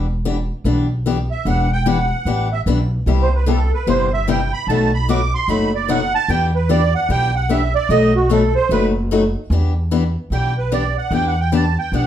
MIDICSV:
0, 0, Header, 1, 4, 480
1, 0, Start_track
1, 0, Key_signature, 1, "minor"
1, 0, Tempo, 402685
1, 1734, Time_signature, 4, 2, 24, 8
1, 14385, End_track
2, 0, Start_track
2, 0, Title_t, "Accordion"
2, 0, Program_c, 0, 21
2, 1563, Note_on_c, 0, 76, 86
2, 1735, Note_off_c, 0, 76, 0
2, 1757, Note_on_c, 0, 78, 83
2, 2034, Note_off_c, 0, 78, 0
2, 2060, Note_on_c, 0, 79, 105
2, 2224, Note_off_c, 0, 79, 0
2, 2242, Note_on_c, 0, 78, 81
2, 2957, Note_off_c, 0, 78, 0
2, 3011, Note_on_c, 0, 76, 94
2, 3115, Note_off_c, 0, 76, 0
2, 3843, Note_on_c, 0, 72, 66
2, 3984, Note_off_c, 0, 72, 0
2, 3996, Note_on_c, 0, 71, 73
2, 4141, Note_off_c, 0, 71, 0
2, 4153, Note_on_c, 0, 69, 70
2, 4431, Note_off_c, 0, 69, 0
2, 4456, Note_on_c, 0, 71, 84
2, 4622, Note_off_c, 0, 71, 0
2, 4631, Note_on_c, 0, 72, 80
2, 4910, Note_off_c, 0, 72, 0
2, 4928, Note_on_c, 0, 76, 93
2, 5097, Note_off_c, 0, 76, 0
2, 5109, Note_on_c, 0, 79, 83
2, 5389, Note_off_c, 0, 79, 0
2, 5401, Note_on_c, 0, 83, 105
2, 5574, Note_off_c, 0, 83, 0
2, 5583, Note_on_c, 0, 81, 84
2, 5866, Note_off_c, 0, 81, 0
2, 5888, Note_on_c, 0, 83, 95
2, 6057, Note_off_c, 0, 83, 0
2, 6079, Note_on_c, 0, 86, 100
2, 6354, Note_off_c, 0, 86, 0
2, 6372, Note_on_c, 0, 84, 102
2, 6539, Note_off_c, 0, 84, 0
2, 6548, Note_on_c, 0, 83, 88
2, 6828, Note_off_c, 0, 83, 0
2, 6854, Note_on_c, 0, 74, 71
2, 7020, Note_off_c, 0, 74, 0
2, 7037, Note_on_c, 0, 78, 93
2, 7313, Note_off_c, 0, 78, 0
2, 7330, Note_on_c, 0, 81, 113
2, 7498, Note_off_c, 0, 81, 0
2, 7507, Note_on_c, 0, 79, 86
2, 7788, Note_off_c, 0, 79, 0
2, 7808, Note_on_c, 0, 71, 66
2, 7977, Note_off_c, 0, 71, 0
2, 7988, Note_on_c, 0, 74, 83
2, 8268, Note_off_c, 0, 74, 0
2, 8284, Note_on_c, 0, 78, 97
2, 8455, Note_off_c, 0, 78, 0
2, 8479, Note_on_c, 0, 79, 102
2, 8754, Note_off_c, 0, 79, 0
2, 8768, Note_on_c, 0, 78, 90
2, 8937, Note_off_c, 0, 78, 0
2, 8949, Note_on_c, 0, 76, 88
2, 9229, Note_off_c, 0, 76, 0
2, 9237, Note_on_c, 0, 74, 92
2, 9411, Note_off_c, 0, 74, 0
2, 9422, Note_on_c, 0, 75, 94
2, 9705, Note_off_c, 0, 75, 0
2, 9718, Note_on_c, 0, 66, 67
2, 9891, Note_off_c, 0, 66, 0
2, 9901, Note_on_c, 0, 69, 71
2, 10184, Note_off_c, 0, 69, 0
2, 10192, Note_on_c, 0, 72, 92
2, 10368, Note_off_c, 0, 72, 0
2, 10389, Note_on_c, 0, 71, 95
2, 10562, Note_off_c, 0, 71, 0
2, 12315, Note_on_c, 0, 79, 91
2, 12593, Note_off_c, 0, 79, 0
2, 12613, Note_on_c, 0, 71, 68
2, 12780, Note_off_c, 0, 71, 0
2, 12791, Note_on_c, 0, 74, 83
2, 13071, Note_off_c, 0, 74, 0
2, 13088, Note_on_c, 0, 78, 87
2, 13258, Note_off_c, 0, 78, 0
2, 13274, Note_on_c, 0, 79, 94
2, 13420, Note_off_c, 0, 79, 0
2, 13438, Note_on_c, 0, 78, 83
2, 13582, Note_off_c, 0, 78, 0
2, 13594, Note_on_c, 0, 79, 86
2, 13740, Note_off_c, 0, 79, 0
2, 13761, Note_on_c, 0, 81, 82
2, 14036, Note_off_c, 0, 81, 0
2, 14053, Note_on_c, 0, 79, 90
2, 14221, Note_off_c, 0, 79, 0
2, 14242, Note_on_c, 0, 78, 85
2, 14385, Note_off_c, 0, 78, 0
2, 14385, End_track
3, 0, Start_track
3, 0, Title_t, "Steel-string acoustic guitar"
3, 0, Program_c, 1, 25
3, 301, Note_on_c, 1, 52, 85
3, 303, Note_on_c, 1, 59, 85
3, 308, Note_on_c, 1, 62, 89
3, 308, Note_on_c, 1, 67, 93
3, 430, Note_off_c, 1, 52, 0
3, 431, Note_off_c, 1, 59, 0
3, 433, Note_off_c, 1, 62, 0
3, 433, Note_off_c, 1, 67, 0
3, 776, Note_on_c, 1, 52, 62
3, 781, Note_on_c, 1, 59, 69
3, 786, Note_on_c, 1, 62, 74
3, 791, Note_on_c, 1, 67, 75
3, 1024, Note_off_c, 1, 52, 0
3, 1026, Note_off_c, 1, 59, 0
3, 1029, Note_off_c, 1, 62, 0
3, 1032, Note_off_c, 1, 67, 0
3, 1262, Note_on_c, 1, 52, 84
3, 1270, Note_on_c, 1, 59, 82
3, 1272, Note_on_c, 1, 62, 89
3, 1276, Note_on_c, 1, 67, 89
3, 1390, Note_off_c, 1, 52, 0
3, 1394, Note_off_c, 1, 59, 0
3, 1395, Note_off_c, 1, 62, 0
3, 1397, Note_off_c, 1, 67, 0
3, 1740, Note_on_c, 1, 52, 61
3, 1747, Note_on_c, 1, 59, 71
3, 1751, Note_on_c, 1, 62, 60
3, 1751, Note_on_c, 1, 67, 76
3, 1986, Note_off_c, 1, 52, 0
3, 1989, Note_off_c, 1, 59, 0
3, 1991, Note_off_c, 1, 62, 0
3, 1992, Note_off_c, 1, 67, 0
3, 2215, Note_on_c, 1, 52, 83
3, 2216, Note_on_c, 1, 59, 81
3, 2223, Note_on_c, 1, 62, 89
3, 2227, Note_on_c, 1, 67, 94
3, 2346, Note_off_c, 1, 52, 0
3, 2347, Note_off_c, 1, 59, 0
3, 2351, Note_off_c, 1, 62, 0
3, 2353, Note_off_c, 1, 67, 0
3, 2698, Note_on_c, 1, 52, 62
3, 2702, Note_on_c, 1, 59, 73
3, 2707, Note_on_c, 1, 62, 82
3, 2714, Note_on_c, 1, 67, 77
3, 2945, Note_off_c, 1, 52, 0
3, 2947, Note_off_c, 1, 59, 0
3, 2949, Note_off_c, 1, 62, 0
3, 2953, Note_off_c, 1, 67, 0
3, 3180, Note_on_c, 1, 52, 80
3, 3188, Note_on_c, 1, 59, 90
3, 3193, Note_on_c, 1, 62, 93
3, 3196, Note_on_c, 1, 67, 90
3, 3309, Note_off_c, 1, 52, 0
3, 3313, Note_off_c, 1, 59, 0
3, 3315, Note_off_c, 1, 62, 0
3, 3317, Note_off_c, 1, 67, 0
3, 3660, Note_on_c, 1, 55, 63
3, 3661, Note_on_c, 1, 48, 68
3, 3664, Note_on_c, 1, 59, 61
3, 3667, Note_on_c, 1, 64, 65
3, 3670, Note_on_c, 1, 67, 75
3, 3906, Note_off_c, 1, 48, 0
3, 3906, Note_off_c, 1, 55, 0
3, 3908, Note_off_c, 1, 59, 0
3, 3909, Note_off_c, 1, 64, 0
3, 3911, Note_off_c, 1, 67, 0
3, 4128, Note_on_c, 1, 48, 88
3, 4137, Note_on_c, 1, 55, 80
3, 4139, Note_on_c, 1, 59, 80
3, 4144, Note_on_c, 1, 64, 85
3, 4148, Note_on_c, 1, 67, 88
3, 4263, Note_off_c, 1, 48, 0
3, 4267, Note_off_c, 1, 55, 0
3, 4268, Note_off_c, 1, 59, 0
3, 4271, Note_off_c, 1, 64, 0
3, 4272, Note_off_c, 1, 67, 0
3, 4616, Note_on_c, 1, 48, 67
3, 4616, Note_on_c, 1, 55, 74
3, 4619, Note_on_c, 1, 59, 72
3, 4622, Note_on_c, 1, 67, 78
3, 4624, Note_on_c, 1, 64, 73
3, 4863, Note_off_c, 1, 48, 0
3, 4864, Note_off_c, 1, 55, 0
3, 4865, Note_off_c, 1, 59, 0
3, 4867, Note_off_c, 1, 67, 0
3, 4868, Note_off_c, 1, 64, 0
3, 5097, Note_on_c, 1, 48, 91
3, 5101, Note_on_c, 1, 55, 91
3, 5107, Note_on_c, 1, 59, 88
3, 5109, Note_on_c, 1, 64, 100
3, 5112, Note_on_c, 1, 67, 96
3, 5227, Note_off_c, 1, 48, 0
3, 5229, Note_off_c, 1, 55, 0
3, 5232, Note_off_c, 1, 59, 0
3, 5233, Note_off_c, 1, 64, 0
3, 5235, Note_off_c, 1, 67, 0
3, 5596, Note_on_c, 1, 47, 63
3, 5600, Note_on_c, 1, 54, 66
3, 5603, Note_on_c, 1, 57, 71
3, 5603, Note_on_c, 1, 63, 71
3, 5604, Note_on_c, 1, 66, 69
3, 5834, Note_off_c, 1, 47, 0
3, 5836, Note_off_c, 1, 54, 0
3, 5837, Note_off_c, 1, 57, 0
3, 5837, Note_off_c, 1, 63, 0
3, 5837, Note_off_c, 1, 66, 0
3, 6063, Note_on_c, 1, 47, 80
3, 6069, Note_on_c, 1, 57, 81
3, 6069, Note_on_c, 1, 63, 89
3, 6070, Note_on_c, 1, 54, 81
3, 6080, Note_on_c, 1, 66, 94
3, 6190, Note_off_c, 1, 47, 0
3, 6193, Note_off_c, 1, 54, 0
3, 6193, Note_off_c, 1, 57, 0
3, 6193, Note_off_c, 1, 63, 0
3, 6198, Note_off_c, 1, 66, 0
3, 6537, Note_on_c, 1, 47, 74
3, 6540, Note_on_c, 1, 54, 74
3, 6546, Note_on_c, 1, 57, 76
3, 6548, Note_on_c, 1, 63, 81
3, 6555, Note_on_c, 1, 66, 77
3, 6783, Note_off_c, 1, 47, 0
3, 6785, Note_off_c, 1, 54, 0
3, 6788, Note_off_c, 1, 57, 0
3, 6789, Note_off_c, 1, 63, 0
3, 6792, Note_off_c, 1, 66, 0
3, 7015, Note_on_c, 1, 47, 83
3, 7023, Note_on_c, 1, 54, 92
3, 7023, Note_on_c, 1, 57, 89
3, 7027, Note_on_c, 1, 63, 87
3, 7030, Note_on_c, 1, 66, 93
3, 7146, Note_off_c, 1, 47, 0
3, 7149, Note_off_c, 1, 54, 0
3, 7149, Note_off_c, 1, 57, 0
3, 7152, Note_off_c, 1, 63, 0
3, 7153, Note_off_c, 1, 66, 0
3, 7497, Note_on_c, 1, 52, 66
3, 7503, Note_on_c, 1, 59, 74
3, 7506, Note_on_c, 1, 62, 67
3, 7515, Note_on_c, 1, 67, 80
3, 7743, Note_off_c, 1, 52, 0
3, 7746, Note_off_c, 1, 59, 0
3, 7748, Note_off_c, 1, 62, 0
3, 7752, Note_off_c, 1, 67, 0
3, 7977, Note_on_c, 1, 52, 86
3, 7985, Note_on_c, 1, 59, 100
3, 7991, Note_on_c, 1, 62, 85
3, 7994, Note_on_c, 1, 67, 85
3, 8106, Note_off_c, 1, 52, 0
3, 8110, Note_off_c, 1, 59, 0
3, 8113, Note_off_c, 1, 62, 0
3, 8115, Note_off_c, 1, 67, 0
3, 8460, Note_on_c, 1, 59, 80
3, 8461, Note_on_c, 1, 52, 72
3, 8466, Note_on_c, 1, 62, 83
3, 8469, Note_on_c, 1, 67, 84
3, 8705, Note_off_c, 1, 52, 0
3, 8705, Note_off_c, 1, 59, 0
3, 8708, Note_off_c, 1, 62, 0
3, 8709, Note_off_c, 1, 67, 0
3, 8931, Note_on_c, 1, 52, 87
3, 8937, Note_on_c, 1, 59, 89
3, 8942, Note_on_c, 1, 62, 96
3, 8947, Note_on_c, 1, 67, 96
3, 9063, Note_off_c, 1, 52, 0
3, 9066, Note_off_c, 1, 59, 0
3, 9069, Note_off_c, 1, 62, 0
3, 9071, Note_off_c, 1, 67, 0
3, 9417, Note_on_c, 1, 47, 63
3, 9417, Note_on_c, 1, 54, 65
3, 9426, Note_on_c, 1, 57, 75
3, 9429, Note_on_c, 1, 63, 67
3, 9431, Note_on_c, 1, 66, 69
3, 9663, Note_off_c, 1, 47, 0
3, 9663, Note_off_c, 1, 54, 0
3, 9668, Note_off_c, 1, 57, 0
3, 9669, Note_off_c, 1, 63, 0
3, 9671, Note_off_c, 1, 66, 0
3, 9888, Note_on_c, 1, 47, 87
3, 9895, Note_on_c, 1, 54, 84
3, 9902, Note_on_c, 1, 57, 91
3, 9905, Note_on_c, 1, 63, 95
3, 9908, Note_on_c, 1, 66, 95
3, 10022, Note_off_c, 1, 47, 0
3, 10025, Note_off_c, 1, 54, 0
3, 10029, Note_off_c, 1, 57, 0
3, 10030, Note_off_c, 1, 63, 0
3, 10032, Note_off_c, 1, 66, 0
3, 10379, Note_on_c, 1, 47, 74
3, 10384, Note_on_c, 1, 54, 76
3, 10385, Note_on_c, 1, 57, 81
3, 10388, Note_on_c, 1, 63, 85
3, 10391, Note_on_c, 1, 66, 84
3, 10624, Note_off_c, 1, 47, 0
3, 10627, Note_off_c, 1, 54, 0
3, 10627, Note_off_c, 1, 57, 0
3, 10629, Note_off_c, 1, 63, 0
3, 10630, Note_off_c, 1, 66, 0
3, 10861, Note_on_c, 1, 47, 86
3, 10867, Note_on_c, 1, 54, 87
3, 10870, Note_on_c, 1, 57, 85
3, 10873, Note_on_c, 1, 63, 99
3, 10879, Note_on_c, 1, 66, 100
3, 10988, Note_off_c, 1, 47, 0
3, 10992, Note_off_c, 1, 54, 0
3, 10993, Note_off_c, 1, 57, 0
3, 10994, Note_off_c, 1, 63, 0
3, 10997, Note_off_c, 1, 66, 0
3, 11342, Note_on_c, 1, 52, 63
3, 11352, Note_on_c, 1, 59, 69
3, 11353, Note_on_c, 1, 62, 71
3, 11356, Note_on_c, 1, 67, 74
3, 11586, Note_off_c, 1, 52, 0
3, 11591, Note_off_c, 1, 59, 0
3, 11592, Note_off_c, 1, 62, 0
3, 11593, Note_off_c, 1, 67, 0
3, 11817, Note_on_c, 1, 52, 78
3, 11821, Note_on_c, 1, 59, 91
3, 11824, Note_on_c, 1, 62, 80
3, 11829, Note_on_c, 1, 67, 96
3, 11947, Note_off_c, 1, 52, 0
3, 11949, Note_off_c, 1, 59, 0
3, 11951, Note_off_c, 1, 62, 0
3, 11953, Note_off_c, 1, 67, 0
3, 12300, Note_on_c, 1, 52, 68
3, 12303, Note_on_c, 1, 59, 63
3, 12310, Note_on_c, 1, 62, 67
3, 12312, Note_on_c, 1, 67, 73
3, 12546, Note_off_c, 1, 52, 0
3, 12547, Note_off_c, 1, 59, 0
3, 12551, Note_off_c, 1, 62, 0
3, 12552, Note_off_c, 1, 67, 0
3, 12775, Note_on_c, 1, 52, 78
3, 12776, Note_on_c, 1, 59, 79
3, 12779, Note_on_c, 1, 62, 92
3, 12783, Note_on_c, 1, 67, 94
3, 12906, Note_off_c, 1, 52, 0
3, 12907, Note_off_c, 1, 59, 0
3, 12908, Note_off_c, 1, 62, 0
3, 12911, Note_off_c, 1, 67, 0
3, 13249, Note_on_c, 1, 52, 65
3, 13255, Note_on_c, 1, 59, 64
3, 13263, Note_on_c, 1, 62, 60
3, 13268, Note_on_c, 1, 67, 75
3, 13501, Note_off_c, 1, 52, 0
3, 13504, Note_off_c, 1, 59, 0
3, 13508, Note_off_c, 1, 62, 0
3, 13511, Note_off_c, 1, 67, 0
3, 13732, Note_on_c, 1, 52, 88
3, 13739, Note_on_c, 1, 59, 89
3, 13739, Note_on_c, 1, 62, 87
3, 13748, Note_on_c, 1, 67, 90
3, 13866, Note_off_c, 1, 52, 0
3, 13869, Note_off_c, 1, 59, 0
3, 13869, Note_off_c, 1, 62, 0
3, 13873, Note_off_c, 1, 67, 0
3, 14224, Note_on_c, 1, 52, 66
3, 14229, Note_on_c, 1, 59, 76
3, 14232, Note_on_c, 1, 62, 73
3, 14234, Note_on_c, 1, 67, 68
3, 14385, Note_off_c, 1, 52, 0
3, 14385, Note_off_c, 1, 59, 0
3, 14385, Note_off_c, 1, 62, 0
3, 14385, Note_off_c, 1, 67, 0
3, 14385, End_track
4, 0, Start_track
4, 0, Title_t, "Upright bass"
4, 0, Program_c, 2, 32
4, 0, Note_on_c, 2, 28, 92
4, 576, Note_off_c, 2, 28, 0
4, 767, Note_on_c, 2, 35, 77
4, 1538, Note_off_c, 2, 35, 0
4, 1732, Note_on_c, 2, 28, 91
4, 2501, Note_off_c, 2, 28, 0
4, 2686, Note_on_c, 2, 33, 74
4, 3098, Note_off_c, 2, 33, 0
4, 3171, Note_on_c, 2, 35, 92
4, 3581, Note_off_c, 2, 35, 0
4, 3650, Note_on_c, 2, 36, 85
4, 4420, Note_off_c, 2, 36, 0
4, 4610, Note_on_c, 2, 31, 72
4, 5379, Note_off_c, 2, 31, 0
4, 5565, Note_on_c, 2, 35, 86
4, 6336, Note_off_c, 2, 35, 0
4, 6529, Note_on_c, 2, 30, 78
4, 7298, Note_off_c, 2, 30, 0
4, 7491, Note_on_c, 2, 40, 91
4, 8259, Note_off_c, 2, 40, 0
4, 8447, Note_on_c, 2, 35, 82
4, 9217, Note_off_c, 2, 35, 0
4, 9405, Note_on_c, 2, 35, 88
4, 10176, Note_off_c, 2, 35, 0
4, 10362, Note_on_c, 2, 30, 77
4, 11134, Note_off_c, 2, 30, 0
4, 11324, Note_on_c, 2, 40, 92
4, 12096, Note_off_c, 2, 40, 0
4, 12279, Note_on_c, 2, 35, 70
4, 13054, Note_off_c, 2, 35, 0
4, 13239, Note_on_c, 2, 40, 93
4, 14014, Note_off_c, 2, 40, 0
4, 14207, Note_on_c, 2, 35, 81
4, 14385, Note_off_c, 2, 35, 0
4, 14385, End_track
0, 0, End_of_file